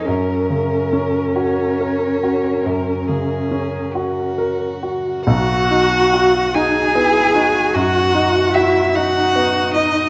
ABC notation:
X:1
M:12/8
L:1/16
Q:3/8=47
K:B
V:1 name="Violin"
A6 c6 A2 G4 F6 | f6 g6 f4 e2 f4 d2 |]
V:2 name="Cello"
C16- C6 z2 | F6 G6 F4 E2 F4 D2 |]
V:3 name="Viola"
A16- A4- A z3 | F6 D2 E2 F8 D6 |]
V:4 name="Grand piano"
F,,2 C,2 C2 F2 A2 F2 F,,2 C,2 C2 F2 A2 F2 | B,,,2 D2 F2 D2 B,2 D2 F,,2 D2 F2 D2 B,2 D2 |]